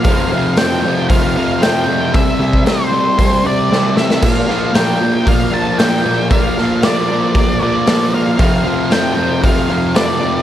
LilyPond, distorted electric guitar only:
\new Staff \with { instrumentName = "Distorted electric guitar" } { \clef bass \time 4/4 \key bes \lydian \tempo 4 = 115 <f, c f>8 <f, c f>8 <f, c f>8 <f, c f>8 <f, c f>8 <f, c f>8 <f, c f>8 <f, c f>8 | <c g c'>8 <c g c'>8 <c g c'>8 <c g c'>8 <c g c'>8 <c g c'>8 <c g c'>8 <c g c'>8 | <bes, f bes>8 <bes, f bes>8 <bes, f bes>8 <bes, f bes>8 <bes, f bes>8 <bes, f bes>8 <bes, f bes>8 <bes, f bes>8 | <bes, f bes>8 <bes, f bes>8 <bes, f bes>8 <bes, f bes>8 <bes, f bes>8 <bes, f bes>8 <bes, f bes>8 <bes, f bes>8 |
<f, c f>8 <f, c f>8 <f, c f>8 <f, c f>8 <f, c f>8 <f, c f>8 <f, c f>8 <f, c f>8 | }